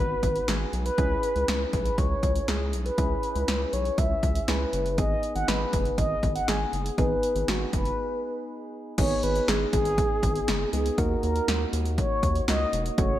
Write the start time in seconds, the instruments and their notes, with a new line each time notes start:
Already playing: analog synth bass G#1, synth keys B3 D#4 F#4, soft synth lead B4
0.23 analog synth bass G#1, kick, closed hi-hat
0.36 closed hi-hat
0.48 analog synth bass G#1, soft synth lead G#4, snare, closed hi-hat
0.73 analog synth bass B1, closed hi-hat
0.86 soft synth lead B4, closed hi-hat
0.98 analog synth bass C#2, synth keys C#4 E4 G#4, kick, closed hi-hat
1.23 closed hi-hat
1.36 analog synth bass C#2, closed hi-hat
1.48 analog synth bass C#2, snare, closed hi-hat
1.73 analog synth bass B1, soft synth lead B4, kick, closed hi-hat
1.86 closed hi-hat
1.98 analog synth bass C#2, soft synth lead C#5, kick, closed hi-hat
2.23 analog synth bass C#2, kick, closed hi-hat
2.36 closed hi-hat
2.48 analog synth bass C#2, soft synth lead G#4, snare, closed hi-hat
2.73 analog synth bass B1, closed hi-hat
2.86 soft synth lead B4, closed hi-hat
2.98 analog synth bass C#2, synth keys C#4 E4 G#4, kick, closed hi-hat
3.23 closed hi-hat
3.36 analog synth bass C#2, closed hi-hat
3.48 analog synth bass C#2, snare, closed hi-hat
3.73 analog synth bass B1, soft synth lead C#5, closed hi-hat
3.85 closed hi-hat
3.98 analog synth bass C#2, soft synth lead E5, kick, closed hi-hat
4.23 analog synth bass C#2, kick, closed hi-hat
4.35 closed hi-hat
4.48 analog synth bass C#2, synth keys C#4 E4 G#4, soft synth lead B4, snare, closed hi-hat
4.73 analog synth bass F#1, closed hi-hat
4.86 closed hi-hat
4.98 analog synth bass G#1, synth keys B3 D#4 G#4, soft synth lead D#5, kick, closed hi-hat
5.23 closed hi-hat
5.36 analog synth bass G#1, soft synth lead F#5, closed hi-hat
5.48 analog synth bass G#1, soft synth lead B4, snare, closed hi-hat
5.73 analog synth bass F#1, kick, closed hi-hat
5.85 closed hi-hat
5.98 analog synth bass G#1, soft synth lead D#5, kick, closed hi-hat
6.23 analog synth bass G#1, kick, closed hi-hat
6.35 soft synth lead F#5, closed hi-hat
6.48 analog synth bass G#1, soft synth lead G#4, snare, closed hi-hat
6.73 analog synth bass F#1, closed hi-hat
6.86 closed hi-hat
6.98 analog synth bass G#1, synth keys B3 D#4 G#4, soft synth lead B4, kick, closed hi-hat
7.23 closed hi-hat
7.36 analog synth bass G#1, closed hi-hat
7.48 analog synth bass G#1, soft synth lead F#4, snare, closed hi-hat
7.73 analog synth bass F#1, soft synth lead B4, kick, closed hi-hat
7.85 closed hi-hat
8.98 analog synth bass G#1, synth keys B3 D#4 G#4, soft synth lead C#5, kick, closed hi-hat, crash
9.23 analog synth bass G#1, soft synth lead B4, closed hi-hat
9.36 closed hi-hat
9.48 analog synth bass G#1, soft synth lead G#4, snare, closed hi-hat
9.73 analog synth bass G#1, soft synth lead G#4, kick, closed hi-hat
9.85 closed hi-hat
9.98 kick, closed hi-hat
10.23 analog synth bass G#1, kick, closed hi-hat
10.36 closed hi-hat
10.48 analog synth bass F#1, snare, closed hi-hat
10.73 analog synth bass C#2, synth keys B3 D#4 G#4, soft synth lead G#4, closed hi-hat
10.86 closed hi-hat
10.98 analog synth bass D#2, synth keys A#3 D#4 F#4, soft synth lead A#4, kick, closed hi-hat
11.23 analog synth bass D#2, soft synth lead A#4, closed hi-hat
11.36 closed hi-hat
11.48 analog synth bass D#2, snare, closed hi-hat
11.73 analog synth bass D#2, closed hi-hat
11.86 closed hi-hat
11.98 soft synth lead C#5, kick, closed hi-hat
12.23 analog synth bass D#2, kick, closed hi-hat
12.35 closed hi-hat
12.48 analog synth bass C#2, synth keys A#3 D#4 F#4, soft synth lead D#5, snare, closed hi-hat
12.73 analog synth bass E1, closed hi-hat
12.86 closed hi-hat
12.98 analog synth bass F#1, synth keys A3 C#4 F#4, soft synth lead C#5, kick, closed hi-hat